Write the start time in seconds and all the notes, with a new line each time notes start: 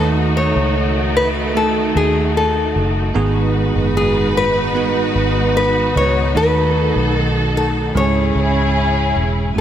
Already playing: D#2 D#3 A3 D#4 F#4 A4
0.37 C#5
0.55 C#2
1.17 B4
1.54 A3 D#4 F#4 A4
1.95 D#2 G#4
2.37 A4
2.75 F#1
3.14 G#1 G#2 D#3 G#3 B3 D#4 F#4 G#4 B4
3.75 F#1
3.97 G#4
4.37 B4
4.75 B3 D#4 F#4 B4
5.15 G#1
5.57 B4
5.95 C#2 C#5
6.35 D#2 D#3 A3 D#4 F#4 A4 B4
6.95 B1
7.21 A4
7.57 A4
7.95 C#2 G#2 C#3 G#3 C#4 E4 G#4 C#5
8.35 C#2
9.16 E1
9.54 F#1 C#3 F#3 A3 C#4 F#4 G#5